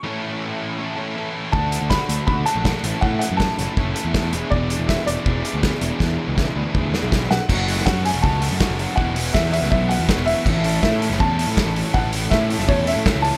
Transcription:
<<
  \new Staff \with { instrumentName = "Upright piano" } { \time 4/4 \key a \major \tempo 4 = 161 cis'''2~ cis'''8 r4. | a''4 b''4 b''8 a''4. | fis''8 fis''8 a''2~ a''8 r8 | d''4 e''8 d''2~ d''8~ |
d''2. r8 fis''8~ | fis''4 fis''8 gis''8 a''4. r8 | fis''4 e''8 e''8 e''8 fis''4 e''8~ | e''4 e''4 a''4. r8 |
fis''4 e''4 cis''8 e''4 a''8 | }
  \new Staff \with { instrumentName = "Overdriven electric guitar" } { \time 4/4 \key a \major <a, e a cis' e' a'>2~ <a, e a cis' e' a'>8 <a, e a cis' e' a'>8 <a, e a cis' e' a'>4 | <d a d' fis' a'>2~ <d a d' fis' a'>8 <d a d' fis' a'>8 <d a d' fis' a'>8 <a, e a cis' e' a'>8~ | <a, e a cis' e' a'>2 <a, e a cis' e' a'>8 <a, e a cis' e' a'>4 <e b d' gis'>8~ | <e b d' gis'>2 <e b d' gis'>8 <e b d' gis'>4 <e b d' gis'>8~ |
<e b d' gis'>2 <e b d' gis'>8 <e b d' gis'>4 r8 | <fis, cis fis a cis' fis'>8 <fis a cis' fis'>8 <fis a cis' fis'>8 <fis a cis' fis'>8 <fis, cis fis a cis' fis'>8 <fis a cis' fis'>8 <fis a cis' fis'>4 | <e fis b e'>8 <fis b e'>8 <e fis b e'>8 <fis b e'>8 <e fis b e'>8 <fis b e'>8 <e fis b e'>4 | <a, e a cis' e'>8 <a cis' e'>8 <e a cis' e'>8 <a cis' e'>8 <a, e a cis' e'>8 <a cis' e'>8 <e a cis' e'>4 |
<a, e a cis' e'>8 <a cis' e'>8 <e a cis' e'>8 <a cis' e'>8 <a, e a cis' e'>8 <a cis' e'>8 <e a cis' e'>4 | }
  \new Staff \with { instrumentName = "Overdriven electric guitar" } { \time 4/4 \key a \major <a, e a cis' e'>2 <a, e a cis' e'>2 | <d a d' fis'>2 <d a d' fis'>4. <a, e a cis' e'>8~ | <a, e a cis' e'>4. <a, e a cis' e'>2 <e, b, e gis d' e'>8~ | <e, b, e gis d' e'>4. <e, b, e gis d' e'>2 <e, b, e gis d' e'>8~ |
<e, b, e gis d' e'>4. <e, b, e gis d' e'>2 r8 | <fis, cis fis a cis' fis'>8 <fis a cis' fis'>8 <fis, cis fis a cis' fis'>8 <fis a cis' fis'>8 <fis a cis' fis'>8 <fis, cis fis a cis' fis'>8 <fis a cis' fis'>8 <fis a cis' fis'>8 | <e, b, e b e' fis'>8 <e b e' fis'>8 <e, b, e b e' fis'>8 <e b e' fis'>8 <e b e' fis'>8 <e, b, e b e' fis'>8 <e b e' fis'>8 <e b e' fis'>8 | <a, e a cis' a'>8 <a cis' a'>8 <a, e a cis' a'>8 <a cis' a'>8 <e a cis' a'>8 <a, e a cis' a'>8 <e a cis' a'>8 <a cis' a'>8 |
<a, e a cis' a'>8 <a cis' a'>8 <a, e a cis' a'>8 <a cis' a'>8 <e a cis' a'>8 <a, e a cis' a'>8 <e a cis' a'>8 <a cis' a'>8 | }
  \new Staff \with { instrumentName = "Picked electric bass" } { \clef bass \time 4/4 \key a \major r1 | d,8. d,8 r16 d,16 r16 d,8 r16 bes,,8 r16 a,,16 r16 | a,8 r16 fis,8 r16 fis,,16 r16 fis,,8 r16 e,8. e,,16 r16 | e,,8. e,,8 r16 e,,16 r16 e,,8 r16 d,8 r16 e,,16 r16 |
e,8 r16 cis,8 r16 d,16 r16 d,8 r16 b,,8. b,,16 r16 | fis,,4 fis,8. e,,16 cis,8. fis,16 r16 fis,,8 r16 | e,,4 e,8. cis,16 b,,8. e,16 r16 e,,8 r16 | a,,4 a,8. fis,,16 e,8. a,16 r16 a,,8 r16 |
a,,4 a,8. fis,,16 e,8. a,16 r16 cis,8 r16 | }
  \new DrumStaff \with { instrumentName = "Drums" } \drummode { \time 4/4 r4 r4 r4 r4 | bd8 hh8 <bd sn>8 hh8 bd8 hh8 <bd sn>8 hh8 | bd8 hh8 <bd sn>8 <hh sn>8 bd8 hh8 <bd sn>8 hh8 | bd8 hh8 <bd sn>8 hh8 bd8 hh8 <bd sn>8 hh8 |
<bd sn>4 <bd sn>4 <bd toml>8 sn8 <bd sn>8 sn8 | <cymc bd>8 hho16 sn16 <bd sn>8 hho8 bd8 hho8 <bd sn>8 hho8 | bd8 hho8 <bd sn>8 hho16 sn16 bd8 hho8 <bd sn>8 hho8 | <cymc bd>8 hho8 <bd sn>8 hho16 sn16 bd8 hho8 <bd sn>8 hho8 |
bd8 hho8 <bd sn>8 hho16 sn16 bd8 hho8 <bd sn>8 hho8 | }
>>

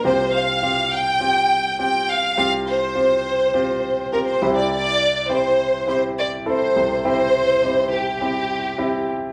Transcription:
<<
  \new Staff \with { instrumentName = "Violin section" } { \time 4/4 \key c \mixolydian \tempo 4 = 103 c''8 f''4 g''4. g''8 f''8 | f''8 c''2~ c''8 bes'16 c''8 d''16 | d''4 c''4 c''8 d''8 c''4 | c''4. g'2 r8 | }
  \new Staff \with { instrumentName = "Grand piano" } { \time 4/4 \key c \mixolydian <c' f' g'>4 <c' f' g'>4 <c' f' g'>4 <c' f' g'>4 | <c' f' g'>4 <c' f' g'>4 <c' f' g'>4 <c' f' g'>8 <c' e' g'>8~ | <c' e' g'>8 r8 <c' e' g'>4 <c' e' g'>4 <c' e' a'>4 | <c' e' g'>4 <c' ees' e' g'>4 <c' e' g'>4 <c' e' g'>4 | }
  \new Staff \with { instrumentName = "Grand piano" } { \clef bass \time 4/4 \key c \mixolydian <c, c>1 | <c, c>2.~ <c, c>8 <c, c>8~ | <c, c>2.~ <c, c>8 <c, c>8~ | <c, c>2.~ <c, c>8 r8 | }
>>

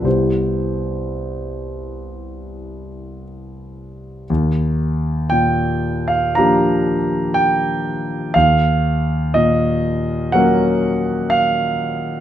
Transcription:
<<
  \new Staff \with { instrumentName = "Grand piano" } { \time 4/4 \key c \major \tempo 4 = 60 c''2. r4 | \key ees \major r4 g''8. f''16 bes''4 g''4 | f''4 ees''4 ges''4 f''4 | }
  \new Staff \with { instrumentName = "Grand piano" } { \time 4/4 \key c \major <c, g b e' g'>1 | \key ees \major ees,4 bes,4 <f bes d' g'>2 | ees,4 bes,4 <ges bes des' bes'>2 | }
>>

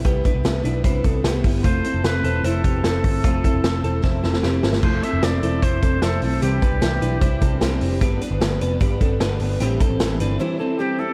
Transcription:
<<
  \new Staff \with { instrumentName = "Trumpet" } { \time 4/4 \key f \lydian \tempo 4 = 151 r1 | c''4 b'4 a'2~ | a'2. r4 | c''8 e''8 d''4 c''4 a'8 a'8 |
g'2. r4 | r1 | r2. g'8 a'8 | }
  \new Staff \with { instrumentName = "Clean electric guitar" } { \time 4/4 \key f \lydian <b g'>8 <d' b'>4 <d' b'>8 <e' c''>8 <c' a'>8 <b g'>4 | <a f'>8 <c' a'>4 <c' a'>8 <e' c''>8 <b g'>8 <c' a'>4 | <a f'>8 <c' a'>4 <c' a'>8 <e' c''>8 <c' a'>8 <c' g'>4 | <a f'>8 <c' a'>4 <c' a'>8 <e' c''>8 <c' a'>8 <e' c''>4 |
<c' g'>8 <d' b'>4 <d' b'>8 <e' c''>8 <c' a'>8 <c' g'>4 | <b g'>8 <d' b'>4 <d' b'>8 <g' d''>8 <c' a'>8 <d' b'>4 | <c' g'>8 <c' a'>4 <d' b'>8 <e' c''>8 <c' a'>8 <c' g'>4 | }
  \new Staff \with { instrumentName = "Steel-string acoustic guitar" } { \time 4/4 \key f \lydian <c g b e'>8 <g b e'>8 <c g b e'>8 <g b e'>8 <c g b e'>8 <g b e'>8 <c g b e'>8 <g b e'>8 | <f a c' e'>8 <a c' e'>8 <f a c' e'>8 <a c' e'>8 <f a c' e'>8 <a c' e'>8 <f a c' e'>8 <a c' e'>8 | <f a c' e'>8 <a c' e'>8 <f a c' e'>8 <a c' e'>8 <f a c' e'>8 <a c' e'>8 <f a c' e'>8 <a c' e'>8 | <f a c' e'>8 <a c' e'>8 <f a c' e'>8 <a c' e'>8 <f a c' e'>8 <a c' e'>8 <f a c' e'>8 <a c' e'>8 |
<c e g d' e'>8 <g d' e'>8 <e g d' e'>8 <g d' e'>8 <c e g d' e'>8 <g d' e'>8 <e g d' e'>8 <g d' e'>8 | <g, d g b d'>8 <g b d'>8 <d g b d'>8 <g b d'>8 <g, d g b d'>8 <g b d'>8 <d g b d'>8 <g b d'>8 | <a, e g c' e'>8 <g c' e'>8 <e g c' e'>8 <g c' e'>8 <a, e g c' e'>8 <g c' e'>8 <e g c' e'>8 <g c' e'>8 | }
  \new Staff \with { instrumentName = "Picked electric bass" } { \clef bass \time 4/4 \key f \lydian c,8 r16 c,16 c,8 b,,8 c,8 c,8 c,8 g,,8 | f,,8 r16 f,,16 f,,8 e,,8 f,,8 f,,8 f,,8 g,,8 | f,,8 r16 f,,16 f,,8 e,,8 f,,8 f,,8 f,,8 g,,8 | f,,8 r16 f,,16 f,,8 e,,8 f,,8 f,,8 f,,8 b,,8 |
c,8 r16 c,16 c,8 b,,8 c,8 c,8 c,8 f,,8 | g,,8 r16 g,,16 g,,8 f,,8 g,,8 g,,8 g,,8 g,,8 | a,,8 r16 a,,16 a,,8 g,,8 r2 | }
  \new DrumStaff \with { instrumentName = "Drums" } \drummode { \time 4/4 <hh bd>8 <hh bd>8 <hh sn>8 hh8 <hh bd>8 <hh bd>8 <hh sn>8 <hho bd>8 | <hh bd>8 hh8 <hh sn>8 hh8 hh8 <hh bd>8 <hh sn>8 <hho bd>8 | <hh bd>8 <hh bd>8 <hh sn>8 hh8 <bd sn>8 sn16 sn16 sn8 sn16 sn16 | <cymc bd>8 hh8 <hh sn>8 hh8 <hh bd>8 <hh bd>8 <hh sn>8 hho8 |
hh8 <hh bd>8 <hh sn>8 hh8 <hh bd>8 <hh bd>8 <hh sn>8 hho8 | <hh bd>8 hh8 <hh sn>8 hh8 <hh bd>8 <hh bd>8 <hh sn>8 hho8 | hh8 <hh bd>8 <hh sn>8 hh8 r4 r4 | }
>>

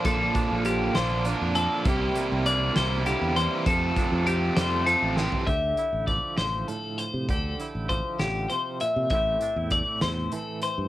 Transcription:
<<
  \new Staff \with { instrumentName = "Clean electric guitar" } { \time 6/8 \key d \minor \tempo 4. = 66 a'4 g'8 c''8 bes'8 a'8 | g'4 d''8 c''8 g'8 c''8 | a'4 g'8 c''8 a'8 g'8 | e''4 d''8 c''8 a'8 c''8 |
a'4 c''8 g'8 c''8 e''8 | e''4 d''8 c''8 a'8 c''8 | }
  \new Staff \with { instrumentName = "Overdriven electric guitar" } { \clef bass \time 6/8 \key d \minor <bes, d f bes d'>4. <bes, d f bes d'>8 <d f bes d'>8 <f bes d'>8 | <c g bes e'>4. <c g bes e'>8 <c g bes e'>8 <g bes e'>8 | <f, c f a c'>4. <f, c f a c'>8 <c f a c'>8 <f a c'>8 | r2. |
r2. | r2. | }
  \new Staff \with { instrumentName = "Clean electric guitar" } { \clef bass \time 6/8 \key d \minor << { r8 d'8 f'4 d'4 | r8 bes8 d'2~ | d'8 d'8 g'2 | g'8 e'2~ e'8 |
g'8 e'2~ e'8 | <a c' e' g'>8 d'16 e'2~ e'16 | } \\ { <bes, f>4. f4 f8 | c4. c8 d8 e8 | f4. g8 f8 e8 | d4 f4 a,4 |
d4 f8 d8 c8 bes,8 | a,4 a4 e4 | } >> }
  \new Staff \with { instrumentName = "Fingered electric bass" } { \clef bass \time 6/8 \key d \minor bes,,8 r16 bes,,8. bes,,8. f,8 r16 | c,8 r16 c,8. c,8. e,8 r16 | f,8 r16 f,8. f,8. a,,8 r16 | d,8 r16 a,,8 r16 a,,8 r8. c16 |
d,8 r16 a,,8 r16 a,,8 r8. c16 | a,,8 r16 e,8 r16 e,8 r8. g,16 | }
  \new DrumStaff \with { instrumentName = "Drums" } \drummode { \time 6/8 <hh bd>8 <hh bd>8 hh8 <hh sn>8 hh8 hh8 | <hh bd>8 hh8 hh8 <hh sn>8 hh8 hh8 | <hh bd>8 <hh bd>8 hh8 <hh sn>8 hh8 sn16 tomfh16 | <hh bd>8 hh8 <hh bd>8 <hh sn>8 hh8 hh8 |
<hh bd>8 hh8 <hh bd>8 <hh sn>8 hh8 hh8 | <hh bd>8 hh8 <hh bd>8 <hh sn>8 hh8 hh8 | }
>>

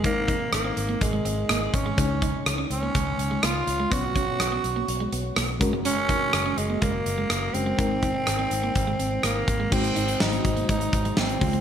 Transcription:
<<
  \new Staff \with { instrumentName = "FM electric piano" } { \time 4/4 \key aes \mixolydian \tempo 4 = 124 <aes c' ees' bes'>1 | <aes des' ees' des''>1 | <ces' des' ges' des''>2.~ <ces' des' ges' des''>8 <aes des' ges' bes'>8~ | <aes des' ges' bes'>2.~ <aes des' ges' bes'>8 <aes des' ges' bes'>8 |
<aes c' ees' bes'>1 | <aes ees' ges' c''>2.~ <aes ees' ges' c''>8 <aes c' f' c''>8 | }
  \new Staff \with { instrumentName = "FM electric piano" } { \clef bass \time 4/4 \key aes \mixolydian aes,4. r2 r8 | des4. r2 r8 | ces4. r2 r8 | r1 |
aes,4. r2 r8 | aes,4. r2 des8 | }
  \new Staff \with { instrumentName = "Tenor saxophone" } { \time 4/4 \key aes \mixolydian bes4 bes4 aes4. des'8~ | des'4 r8 des'4. f'4 | ges'2. r4 | des'4. aes8 bes4. c'8~ |
c'2. bes4 | c'4 ees'4 ees'4 c'4 | }
  \new Staff \with { instrumentName = "Clean electric guitar" } { \time 4/4 \key aes \mixolydian c'16 r16 ees'16 r8 c'16 r16 bes16 r16 aes16 c'16 r16 bes16 r8 aes16 | des'16 r16 ees'16 r8 des'16 r16 bes16 aes16 r8 aes16 bes16 r8 aes16 | ces'16 r16 des'16 r8 ces'16 r16 bes16 r16 aes16 ces'16 r16 bes16 r8 aes16 | des'16 r16 ees'16 r8 des'16 r16 bes16 aes16 r8 aes16 bes16 r8 aes16 |
c'16 r16 ees'16 r8 c'16 r16 bes16 r16 aes16 c'16 r16 bes16 r8 aes16 | c'16 r16 ees'16 r8 c'16 r16 bes16 aes16 r8 aes16 bes16 r8 aes16 | }
  \new Staff \with { instrumentName = "String machine" } { \time 4/4 \key aes \mixolydian r1 | r1 | r1 | r1 |
r1 | r2. r8 <des f'>8 | }
  \new Staff \with { instrumentName = "Fingered electric bass" } { \clef bass \time 4/4 \key aes \mixolydian aes,,4 aes,,8 aes,,8 aes,,8 aes,,8 aes,,8 aes,,8 | des,4 des,8 des,8 des,8 des,8 des,8 des,8 | ces,4 ces,8 ces,8 ces,8 ces,8 ces,8 ges,,8~ | ges,,4 ges,,8 ges,,8 ges,,8 ges,,8 ges,,8 ges,,8 |
aes,,4 aes,,8 aes,,8 aes,,8 aes,,8 aes,,8 aes,,8 | aes,,8 aes,,8 aes,,8 aes,,8 aes,,8 aes,,8 aes,,8 des,8 | }
  \new DrumStaff \with { instrumentName = "Drums" } \drummode { \time 4/4 <hh bd>8 <hh bd>8 <hh ss>8 hh8 <hh bd>8 hh8 <hh ss>8 <hh bd>8 | <hh bd>8 <hh bd>8 <hh ss>8 hh8 <hh bd>8 hh8 <hh ss>8 hh8 | <hh bd>8 <hh bd>8 <hh ss>8 hh8 hh8 hh8 <hh ss>8 <hh bd>8 | hh8 <hh bd>8 <hh ss>8 hh8 <hh bd>8 hh8 <hh ss>8 hh8 |
<hh bd>8 <hh bd>8 <hh ss>8 hh8 <hh bd>8 hh8 <hh ss>8 <hh bd>8 | <cymc bd>16 hh16 hh16 hh16 sn16 hh16 <hh bd>16 hh16 <hh bd>16 hh16 <hh bd>16 hh16 sn16 hh16 <hho bd>16 hh16 | }
>>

